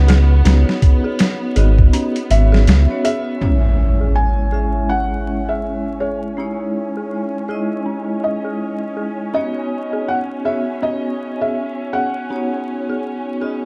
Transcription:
Already playing: C#2 B3 C#4 D#4 F#4 G#4 C#5 D#5
0.08 G#4, snare, closed hi-hat
0.45 C#2 B3 C#4 D#4 F#4 C#5, snare, closed hi-hat
0.69 snare
0.82 kick, closed hi-hat
1.04 G#4
1.19 snare, closed hi-hat
1.56 G#1 B3 D#4 F#4 G#4 D#5, closed hi-hat
1.78 kick
1.93 C#4, closed hi-hat
2.16 closed hi-hat
2.30 G#1 B3 C#4 F#4 C#5 E5, closed hi-hat
2.52 G#4, snare
2.67 C#2, snare, closed hi-hat
2.90 B3 C#4 F#4 C#5
3.04 G#4 E5, closed hi-hat
3.41 G#3 C#4 E4 C#5, impact
4.00 G#4
4.15 G#5
4.51 G#3 C#4 E4 G#4 E5
4.89 C#4 F#5
5.49 G#4 E5
6.00 G#4 C#5
6.37 G#3 C#4 D#4 E4 C#5
6.97 G#4
7.48 G#3 D#4 E4 G#4 D#5
7.86 C#4
8.24 D#5
8.45 G#4
8.97 G#4
9.34 B3 C#4 D#4 F#4 C#5 D#5
9.93 G#4
10.08 F#5
10.45 B3 C#4 F#4 G#4 C#5 E5
10.82 C#4 D#5
11.41 G#4 E5
11.93 G#4 F#5
12.30 B3 C#4 D#4 F#4 C#5
12.89 G#4
13.41 B3 D#4 F#4 G#4 D#5

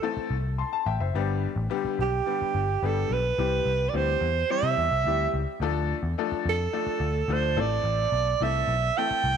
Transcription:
Already playing: A4
0.02 E3 A3 C4 A4
0.17 muted picked electric bass stroke
0.30 C2
0.58 A5 C6
0.73 A5
0.86 A1 E5 G5
1.00 F#1 C5 E5
1.14 G1 D3 G3 B3 G4
1.56 A1
1.70 D3 G3 B3 G4
1.85 muted picked electric bass stroke
1.99 B1 G4
2.26 D3 G3 B3 G4
2.42 muted picked electric bass stroke
2.54 G1
2.82 G1 D3 G3 B3 G4 A4
3.09 B1 B4
3.38 C2 E3 G3 C4 G4
3.65 C2
3.89 D5
3.93 D2 E3 G3 C4 G4 C5
4.21 E2
4.50 E3 G3 C4 G4 E5
4.63 C3
4.77 E2
4.91 C2
5.04 D2 E3 G3 C4 G4
5.34 C#2
5.60 D2 F3 A3 D4 A4
6.03 E2
6.18 F3 A3 D4 A4
6.32 muted picked electric bass stroke
6.46 F2 A4
6.73 F3 A3 D4 A4
6.87 muted picked electric bass stroke
7.00 D2
7.28 D2 F3 A3 D4 A4
7.33 C5
7.56 A1 E3 A3 C4 A4
7.60 D5
7.84 A1
8.12 B1
8.41 C2 E3 A3 C4 A4 E5
8.68 B1
8.97 E3 A3 C4 A4 G5
9.11 muted picked electric bass stroke
9.24 C2

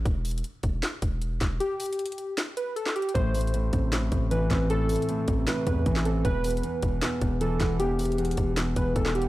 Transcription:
0.06 E1, kick, closed hi-hat
0.25 closed hi-hat, open hi-hat
0.31 closed hi-hat
0.38 closed hi-hat
0.44 closed hi-hat
0.63 E1, kick, closed hi-hat
0.83 snare, clap, closed hi-hat
1.02 E1, kick, closed hi-hat
1.22 closed hi-hat
1.41 E1, kick, snare, clap, closed hi-hat
1.60 G4, closed hi-hat
1.80 closed hi-hat, open hi-hat
1.86 closed hi-hat
1.93 closed hi-hat
1.99 closed hi-hat
2.06 closed hi-hat
2.12 closed hi-hat
2.18 closed hi-hat
2.38 snare, clap, closed hi-hat
2.57 B4, closed hi-hat
2.76 A4, closed hi-hat
2.86 snare, clap
2.96 G4, closed hi-hat
3.02 closed hi-hat
3.09 closed hi-hat
3.14 A1 A2 C5, kick, closed hi-hat
3.35 A2, closed hi-hat, open hi-hat
3.41 closed hi-hat
3.47 closed hi-hat
3.54 A2, closed hi-hat
3.73 A1 C3, kick, closed hi-hat
3.92 A2, snare, clap, closed hi-hat
4.12 A1 A2, kick, closed hi-hat
4.31 E3 B4, closed hi-hat
4.50 A1 C4, kick, snare, clap, closed hi-hat
4.70 A2 A4, closed hi-hat
4.89 A2, closed hi-hat, open hi-hat
4.96 closed hi-hat
5.02 closed hi-hat
5.09 A2, closed hi-hat
5.28 A1 C3, kick, closed hi-hat
5.47 A2 B4, snare, clap, closed hi-hat
5.66 E2 A2 B4, kick, closed hi-hat
5.86 A1 E3, kick, closed hi-hat
5.96 snare, clap
6.05 C4 A4, closed hi-hat
6.25 E1 E2 B4, kick, closed hi-hat
6.44 E2, closed hi-hat, open hi-hat
6.51 closed hi-hat
6.57 closed hi-hat
6.63 E2, closed hi-hat
6.82 E1 B2, kick, closed hi-hat
7.02 E2, snare, clap, closed hi-hat
7.21 E1 E2, kick, closed hi-hat
7.41 E3 A4, closed hi-hat
7.60 E1 B3, kick, snare, clap, closed hi-hat
7.79 E2 G4, closed hi-hat
7.99 E2, closed hi-hat, open hi-hat
8.05 closed hi-hat
8.12 closed hi-hat
8.18 E2, closed hi-hat
8.25 closed hi-hat
8.31 closed hi-hat
8.37 E1 B2, kick, closed hi-hat
8.57 E2, snare, clap, closed hi-hat
8.76 E1 E2 B4, kick, closed hi-hat
8.95 E1 E3 A4, kick, closed hi-hat
9.05 snare, clap
9.15 B3 G4, closed hi-hat
9.22 closed hi-hat

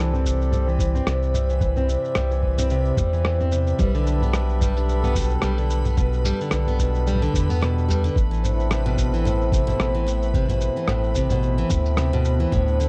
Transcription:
Already playing: C2 E3 C4 D4 G4 A4 B4 C5 D5 B5
0.13 C4, mid tom, shaker
0.25 C3, kick, shaker
0.41 shaker
0.52 G3 C5, mid tom, shaker
0.67 E3, shaker
0.79 kick, shaker
0.95 C4, mid tom, shaker
1.07 C2 C3 C5, cross-stick, shaker
1.22 shaker
1.34 G3 E5, mid tom, shaker
1.50 E3, shaker
1.61 kick, shaker
1.76 C4, mid tom, shaker
1.89 C3 C5, shaker
2.05 shaker
2.15 C2 G3, cross-stick, mid tom, shaker
2.31 E3, shaker
2.43 C5, kick
2.58 C4, mid tom, shaker
2.70 C3, shaker
2.85 shaker
2.97 E2 G3, kick, mid tom, shaker
3.13 E3, shaker
3.25 C5, cross-stick
3.40 C4, mid tom, shaker
3.52 C3, shaker
3.67 shaker
3.78 B1 G3 B4, kick, mid tom, shaker
3.95 D3, shaker
4.03 D4
4.07 shaker
4.20 B3 B5, mid tom, shaker
4.33 B2, cross-stick, shaker
4.49 shaker
4.61 G3 B4, kick, mid tom, shaker
4.77 D3, shaker
4.89 shaker
4.99 A4
5.04 B3, mid tom, shaker
5.15 B2, kick, shaker
5.18 shaker
5.21 shaker
5.23 shaker
5.30 shaker
5.42 B1 G3, cross-stick, mid tom, shaker
5.58 D3, shaker
5.70 shaker
5.85 B3, mid tom, shaker
5.96 B2 B4, kick, shaker
6.13 shaker
6.25 G3, mid tom, shaker
6.41 D3, shaker
6.51 B1 B4, cross-stick, shaker
6.67 B3, mid tom, shaker
6.79 B2, kick, shaker
6.95 shaker
7.06 G3, mid tom, shaker
7.09 mid tom
7.12 mid tom
7.14 mid tom
7.16 mid tom
7.19 D3, mid tom, shaker
7.33 E2 B4, kick, shaker
7.50 B3, mid tom, shaker
7.62 B2, cross-stick, shaker
7.78 shaker
7.88 G3 B4, mid tom, shaker
8.04 D3, shaker
8.16 A1 A3, kick, shaker
8.31 E3, shaker
8.43 A2 C5, mid tom, shaker
8.54 C4 E4
8.60 shaker
8.71 C3, cross-stick, shaker
8.86 B2, mid tom, shaker
8.97 kick, shaker
9.14 E3, shaker
9.25 A2 C5, mid tom, shaker
9.42 shaker
9.52 C3, kick, shaker
9.67 B2, mid tom, shaker
9.80 A1, cross-stick, shaker
9.95 E3, shaker
10.07 A2, shaker
10.22 shaker
10.34 C3, kick, shaker
10.49 B2, mid tom, shaker
10.61 C5, shaker
10.76 E3, shaker
10.88 A1 A2, cross-stick, mid tom, shaker
11.04 shaker
11.14 C3 C5, kick, shaker
11.30 B2, mid tom, shaker
11.43 shaker
11.58 E3, shaker
11.70 D2 A2, kick, mid tom, shaker
11.86 shaker
11.97 C3 C5, cross-stick, shaker
12.13 B2, mid tom, shaker
12.25 shaker
12.40 E3
12.51 D2 A2 D4 C5, kick, mid tom, shaker
12.68 shaker
12.80 D3 A4, shaker

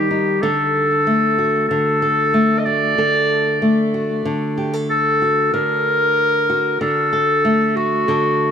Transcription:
Already playing: D#3 G3 G4
0.11 D#4
0.42 D3 A4
1.07 A3
1.38 F#4
1.68 D3 A4
2.02 A4
2.34 A3
2.59 D#5
2.65 F#4 D5
2.98 D3 A4
3.62 A3
3.94 F#4
4.25 D3
4.57 G4
4.74 A4
4.90 A4
5.22 F#4
5.53 D3 A#4
6.50 F#4
6.81 D3 A4
7.13 A4
7.45 A3
7.76 F#4
8.08 D3 A4

